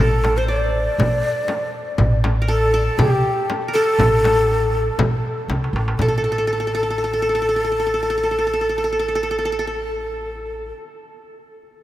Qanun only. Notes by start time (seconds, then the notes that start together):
Already playing: A4
0.38 C5
0.48 D5
2.42 A#4
2.48 A4
2.74 A4
2.99 G4
3.68 A#4
3.75 A4
6.01 A4
6.08 A4
6.18 A4
6.24 A4
6.32 A4
6.38 A4
6.47 A4
6.53 A4
6.60 A4
6.67 A4
6.75 A4
6.83 A4
6.90 A4
6.98 A4
7.04 A4
7.13 A4
7.22 A4
7.29 A4
7.35 A4
7.42 A4
7.49 A4
7.56 A4
7.64 A4
7.72 A4
7.80 A4
7.87 A4
7.94 A4
8.03 A4
8.10 A4
8.18 A4
8.23 A4
8.31 A4
8.38 A4
8.47 A4
8.53 A4
8.61 A4
8.69 A4
8.78 A4
8.84 A4
8.92 A4
8.99 A4
9.08 A4
9.15 A4
9.23 A4
9.31 A4
9.38 A4
9.45 A4
9.52 A4
9.59 A4
9.67 A4